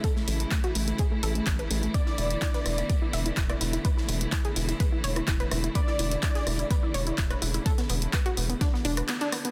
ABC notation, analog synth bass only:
X:1
M:4/4
L:1/8
Q:1/4=126
K:Emix
V:1 name="Analog synth bass" clef=bass
z A,,, z A,,, z A,,, A,,, A,,, | z E,,, z E,,, z E,,, E,,, E,,, | z E,,, z E,,, z E,,, E,,, E,,, | z E,,, z E,,, z E,,, E,,, E,,, |
z E,,, z E,,, z E,,, z2 |]